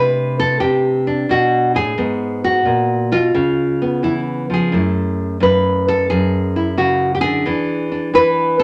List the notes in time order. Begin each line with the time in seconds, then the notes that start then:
Already playing: C3 A3 D4 B4
0.40 A4
0.60 C3 G4
1.07 D4
1.29 B2 F#4
1.75 A2 G#4
1.98 G#2 B3
2.44 F#4
2.65 A#2
3.12 B2 F4
3.34 C#3
3.82 B3
4.03 E3 E4
4.50 F3 G#4
4.72 F#2 A3 E4
5.40 F#2 B4
5.88 A4
6.10 F#2 G#4
6.56 E4
6.77 C#3 F#4
7.15 G4
7.21 D3 G#4
7.46 E3 D4
7.92 D4
8.14 E3 B4
8.59 A4